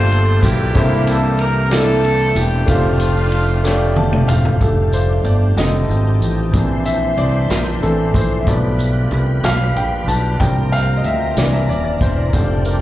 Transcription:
Already playing: G1 G2 F3 A3 A#3 D4 F4 G4 A4 C5 D5
0.12 ride
0.43 B1 A#3 E4 G4, kick, ride, tambourine
0.74 C2 C3 E3 A#3 C4 D4 E4 G4 A4 C5, kick, ride, tambourine
1.07 A4, ride, tambourine
1.39 A#4, ride
1.69 A#3 D4 E4 A4 D5, snare, ride, tambourine
2.04 ride
2.35 E1 G4, ride, tambourine
2.66 F1 F3 A3 C4 D4 F4 G4 A#4, kick, ride, tambourine
2.75 C5
3.00 ride, tambourine
3.32 ride
3.64 A3 D4 F4 G4 C#5, snare, tambourine
3.73 D5
3.96 A5, high tom
4.13 mid tom
4.28 E1 F5, mid tom, tambourine
4.45 floor tom
4.60 F1 F3 G3 A3 D4 G4 A4 F5 G5 A5, kick, closed hi-hat, tambourine
4.92 C5, closed hi-hat, tambourine
5.24 G1 D5, closed hi-hat
5.56 F1 D3 D#3 F3 G3 A3 C4 G4 D#5, snare, closed hi-hat, tambourine
5.89 G#1, closed hi-hat
6.21 A1, closed hi-hat, tambourine
6.52 A#1 E3 A#3 C4 D4 G#4 E5 C6, kick, closed hi-hat, tambourine
6.59 C5
6.85 E5, closed hi-hat, tambourine
7.17 C2 D5, closed hi-hat
7.50 A#1 A#4, snare, closed hi-hat, tambourine
7.82 A1 E3 A3 C4 D4 A4, closed hi-hat
8.14 A#1 C5, kick, closed hi-hat, tambourine
8.41 E5
8.47 B1 F3 G3 A3 B3 D4 F4 A4 D5 G5 B5, kick, closed hi-hat, tambourine
8.53 B4
8.79 closed hi-hat, tambourine
9.11 C2, closed hi-hat
9.43 B1 F5, snare, closed hi-hat, tambourine
9.76 A#1 G5, closed hi-hat
10.08 B1 A5, closed hi-hat, tambourine
10.40 C2 F3 G3 A#3 C4 D4 F4 A#4 C5 G5 A#5, kick, closed hi-hat, tambourine
10.72 F5, snare, closed hi-hat, tambourine
10.97 D#5
11.04 D2 E5, closed hi-hat
11.37 C2 E3 A#3 C4 D4 A#4 D5 E5, snare, closed hi-hat, tambourine
11.54 E5
11.69 D#1 D5, closed hi-hat
11.84 D5
12.01 E1 C5, kick, closed hi-hat, tambourine
12.17 D5
12.33 F1 G3 A3 D4 F4 G4 C5 G5 A5, kick, closed hi-hat, tambourine
12.65 A#4, closed hi-hat, tambourine

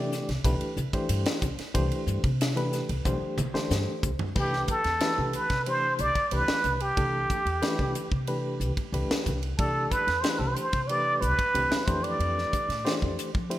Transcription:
Already playing: C3 E3 A3 D4 G4 D5
0.12 snare, hi-hat pedal
0.29 C2, snare, ride
0.44 B1 E3 A3 D4 G4 B4, kick, hi-hat pedal, ride
0.61 muted upright bass stroke, ride
0.77 C2, hi-hat pedal
0.93 E3 A3 D4 G4 C5, muted upright bass stroke, kick, ride
1.09 G2, hi-hat pedal, ride
1.26 snare, ride
1.42 C2, kick, hi-hat pedal
1.58 muted upright bass stroke, snare, ride
1.74 C2 E3 A3 D4 G4 C5, kick, hi-hat pedal, ride
1.92 ride
2.07 G2, hi-hat pedal
2.24 C3, kick, ride
2.41 snare, hi-hat pedal, ride
2.56 E3 A3 D4 G4 B4, ride
2.73 snare, hi-hat pedal
2.89 C2, ride
3.05 B1 E3 A3 D4 G4 C5, kick, hi-hat pedal, high tom
3.21 muted upright bass stroke
3.37 C2, hi-hat pedal, mid tom
3.54 E3 A3 D4 G4 C5, muted upright bass stroke, snare
3.70 G2, snare, hi-hat pedal
4.03 C2, kick, hi-hat pedal
4.19 muted upright bass stroke, floor tom
4.35 C2 E3 A3 D4 G4 B4, kick, crash
4.53 snare
4.68 A4, muted upright bass stroke, kick, hi-hat pedal, ride
4.84 E2, snare, ride
5.00 E3 A3 D4 G4 B4, snare, ride
5.18 C2
5.33 B4, hi-hat pedal, ride
5.50 C3, kick, snare, ride
5.66 E3 A3 D4 G4 C5, ride
5.99 C2 D5, hi-hat pedal, ride
6.15 muted upright bass stroke, kick, ride
6.31 C2 E3 A3 D4 G4 B4, ride
6.48 muted upright bass stroke, snare
6.64 C2, hi-hat pedal, ride
6.80 G4, ride
6.97 C2 E3 A3 D4 G4 A4, kick, ride
7.30 muted upright bass stroke, kick, hi-hat pedal, ride
7.45 E2, ride
7.62 E3 A3 D4 G4 B4, snare, ride
7.79 C2, kick
7.95 hi-hat pedal, ride
8.12 C3, kick
8.27 E3 A3 D4 G4 B4, ride
8.60 C2, hi-hat pedal, ride
8.77 muted upright bass stroke, kick, ride
8.92 C2 E3 A3 D4 G4 B4, ride
9.09 muted upright bass stroke, snare
9.26 C2, kick, hi-hat pedal, ride
9.43 ride
9.58 C2 E3 A3 D4 G4 A4 D5, kick, ride
9.91 B4, muted upright bass stroke, kick, hi-hat pedal, ride
10.07 E2, snare, ride
10.21 E3 A3 D4 G4 C5, snare, ride
10.29 B4
10.39 C2 A4
10.47 B4
10.54 C5, hi-hat pedal, ride
10.73 C3, kick, ride
10.88 E3 A3 D4 G4 B4 D5, ride
11.21 C2 B4, hi-hat pedal, ride
11.39 muted upright bass stroke, kick, ride
11.54 C2 E3 A3 C4 D4 G4, ride
11.71 muted upright bass stroke, snare
11.86 F2 E3 A3 D4 G4 B4 C5, kick, hi-hat pedal, ride
12.03 D5, ride
12.20 F2, ride
12.38 snare
12.53 muted upright bass stroke, kick, hi-hat pedal, ride
12.69 A2, snare, ride
12.85 E3 A3 D4 G4 C5, snare, ride
13.02 F2, kick
13.19 hi-hat pedal, ride
13.35 F3, kick
13.50 A3 D4 E4 G4 C5, ride

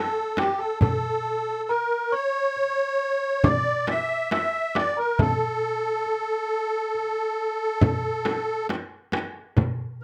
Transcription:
Already playing: A4 A5
0.37 G4 G5, darbuka tek, frame drum
0.58 A4 A5
0.81 A4 A5, frame drum, darbuka dum
1.69 A#4 A#5, darbuka ka
2.12 C#5 C#6
2.56 darbuka ka
3.44 D5 D6, darbuka dum, frame drum
3.87 E5, darbuka tek, frame drum
4.31 E5 E6, darbuka tek, frame drum
4.75 D5 D6, darbuka tek, frame drum
4.97 A#4 A#5
5.19 A4 A5, darbuka dum, frame drum
6.06 darbuka ka
6.95 darbuka ka
7.81 frame drum, darbuka dum
8.25 darbuka tek, frame drum
8.69 darbuka tek, frame drum
9.12 darbuka tek, frame drum
9.57 frame drum, darbuka dum

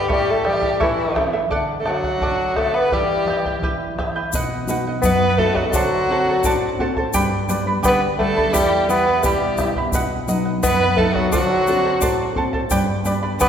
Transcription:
0.08 A2 E4 A4 C#5 E5 G5, bombo low
0.12 G3 G4
0.29 A3 A4
0.43 E3 G3 E4 A4 E5 G5, bombo rim
0.47 G4
0.62 E4 A4 E5, bombo low
0.80 A2 E3 E4 A4 C#5 E5 G5, bombo low
1.15 E3 E4 A4 E5 G5, bombo rim, bombo low
1.33 E4 A4 E5
1.50 D3 A4 D5 F#5, bombo low
1.79 A3 A4
1.85 D3 F#3 A4 D5 F#5, bombo rim
1.90 F#4
2.03 D5 F#5, bombo low
2.21 D3 A4 D5 F#5, bombo low
2.56 D3 A3 A4 D5 F#5, bombo rim, bombo low
2.74 B3 B4 D5 F#5
2.92 E3 G3 E4 G4 B4 E5 G5, bombo low
3.28 E3 E4 B4 E5 G5, bombo rim
3.45 E4 B4 G5, bombo low
3.62 E3 E4 G4 B4 E5 G5, bombo low
3.98 E3 E4 B4 E5 G5, bombo rim, bombo low
4.16 E4 B4 G5
4.33 B2 B4 D#5 F#5, bombo low, shaker
4.67 B3 D#4 F#4 B4 D#5 F#5, shaker
4.87 D#5 F#5
5.02 F#2 B3 B4 D#5 F#5, bombo low, shaker
5.38 A3 B3 D#4 F#4 A4 B4 D#5 F#5, bombo low
5.55 F#3 F#4 D#5 F#5, bombo low
5.66 A3
5.70 D3 F#3 A4, bombo low, shaker
5.74 F#4 A4 C5 D5 F#5 A5
6.09 C4 D4 F#4 A4 C5 F#5 A5
6.29 A4 C5 A5
6.44 A2 A4 C5 D5 F#5 A5, bombo low, shaker
6.79 C4 D4 F#4 A4 C5 F#5 A5, bombo low
6.96 A4 C5 A5, bombo low
7.13 G2 G4 B4 D5 G5 B5, bombo low, shaker
7.49 G3 B3 D4 B4 D5 G5 B5, shaker
7.67 B4 D5 B5
7.83 D3 B3 G4 B4 D5 G5 B5, bombo low, shaker
7.87 B4
8.18 G3 A3 B3 D4 A4 B4 D5 G5 B5, bombo low
8.36 B4 D5 B5, bombo low
8.53 E2 G3 E4 G4 E5 G5 B5, bombo low, shaker
8.87 G3 B3 E4 B4 E5 G5 B5, shaker
9.07 E4 E5 B5
9.23 B2 G3 E4 G4 E5 G5 B5, bombo low, shaker
9.57 G3 B3 E4 E5 G5, bombo rim, bombo low, shaker
9.61 B5
9.76 E4 E5 B5, bombo low
9.92 B2 B4 D#5 F#5, bombo low, shaker
10.27 F#3 B3 D#4 B4 D#5 F#5, shaker
10.45 D#5 F#5
10.63 F#2 B3 B4 D#5 F#5, bombo low, shaker
10.96 F#3 A3 B3 D#4 A4 B4 D#5 F#5, bombo low
11.13 F#3 F#4 D#5 F#5, bombo low
11.32 D3 F#3 F#4 A4 C5 D5 F#5 A5, bombo low, shaker
11.67 C4 D4 F#4 A4 C5 F#5 A5, shaker
11.84 A4 C5 A5
12.01 A2 A4 C5 D5 F#5 A5, bombo low, shaker
12.35 C4 D4 F#4 A4 C5 F#5 A5, bombo low
12.53 A4 C5 A5, bombo low
12.70 G2 G4 B4 D5 G5 B5, bombo low, shaker
13.04 G3 B3 D4 B4 D5 G5 B5, shaker
13.23 B4 D5 B5
13.39 D3 B3 G4 B4 D5 G5 B5, bombo low, shaker

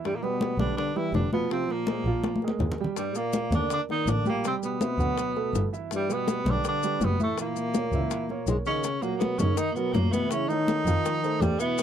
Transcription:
Already playing: E3 E4 E5
0.05 G2 G3, high bongo, high conga
0.16 A#2 A#3
0.22 B2 G3 B3 G4 B4, high bongo, high conga
0.41 high bongo, high conga
0.58 B1 D3 G3 D4 G4 B4, high conga
0.77 D3 D4, high bongo, high conga
0.95 E3 G3 E4 G4 B4, high bongo, high conga
1.14 F1 D3 D4, high bongo, low bongo, high conga
1.33 B2 F3 B3 F4 F5, high bongo, high conga
1.50 C3 F3 C4 F4 F5, high bongo, high conga
1.69 A#2 A#3, high bongo, high conga
1.87 G#3 G#4 C5, high bongo, high conga
2.05 A#1 F3 F4 F5, high conga
2.24 high bongo, high conga
2.36 high conga
2.42 G#3 G#4 A#4, high bongo
2.48 high conga
2.60 D#2, high bongo, low bongo
2.72 low conga
2.78 G3 G4 G5, high bongo
2.84 low conga
2.96 G2 G3, high bongo, high conga, maracas
3.15 A#2 A#3 A#4 D5, high bongo, high conga, maracas
3.33 high bongo, high conga, maracas
3.52 D#2 D3 A#3 D4 A#4 D5, high conga, maracas
3.70 D3 D4, high bongo, high conga, maracas
3.89 D#3 A#3 D#4 A#4 D5, high bongo, high conga
4.07 A1 D3 D4, high bongo, low bongo, high conga, maracas
4.26 A#2 G3 A#3 G4 G5, high bongo, high conga, maracas
4.44 C3 G3 C4 G4 G5, high bongo, high conga, maracas
4.63 B2 B3, high bongo, high conga, maracas
4.81 C4 C5 E5, high bongo, high conga, maracas
4.98 D2 F#3 F#4 F#5, high conga, maracas
5.18 high bongo, high conga, maracas
5.36 A3 A4 B4, high bongo, high conga
5.54 G1, high bongo, low bongo, high conga, maracas
5.73 E3 E4 E5, high bongo, maracas
5.91 G2, high bongo, high conga, maracas
5.95 G3
6.09 B2 G3 B3 G4 B4, high bongo, high conga, maracas
6.28 high bongo, high conga, maracas
6.46 B1 D3 G3 G4 B4, high conga, maracas
6.50 D4
6.65 D3 D4, high bongo, high conga, maracas
6.83 G3 G4 B4, high bongo, high conga, maracas
7.01 F#1 B2 B3, high bongo, low bongo, high conga, maracas
7.20 A2 E3 A3 E4 E5, high bongo, high conga, maracas
7.38 A#2 E3 A#3 E4 E5, high bongo, high conga, maracas
7.56 high bongo, high conga, maracas
7.74 A#3 A#4 C#5, high bongo, high conga, maracas
7.92 C#2 E3 E4 E5, high conga, maracas
8.11 high bongo, high conga, maracas
8.29 A#3 A#4 C#5, high bongo, high conga
8.47 B1 G#2 G#3, high bongo, low bongo, high conga, maracas
8.66 C#3 D#3 C#4 D#4 D#5, high bongo, maracas
8.84 high bongo, high conga, maracas
9.01 A#2 F#3 A#3 F#4 A#4, high bongo, high conga, maracas
9.16 A#2 A#3 B3
9.21 B2, high bongo, high conga, maracas
9.39 F#2 C#3 D#3 C#4 D#4 D#5, high bongo, high conga, low conga, maracas
9.57 D#3 D#4, high bongo, high conga, maracas
9.72 A#2 A#3 B3
9.76 B2 F#3 F#4 A#4, high conga, maracas
9.93 F#2 A#2 A#3, high bongo, low bongo, high conga, maracas
10.12 B2 E3 B3 E4 E5, high bongo, high conga, maracas
10.30 C#3 E3 C#4 E4 E5, high bongo, high conga, maracas
10.48 D#3 A3 D#4 A4, high bongo, high conga, maracas
10.53 C#5
10.68 high bongo, high conga, maracas
10.86 F2 F3 F4 F5, high bongo, high conga, maracas
11.05 high bongo, high conga, maracas
11.23 A3 A4 C5, high conga, maracas
11.41 E2 G2 G3, high bongo, low bongo, high conga, maracas
11.60 B2 E3 B3 E4 E5, high bongo, maracas
11.78 high bongo, high conga, maracas

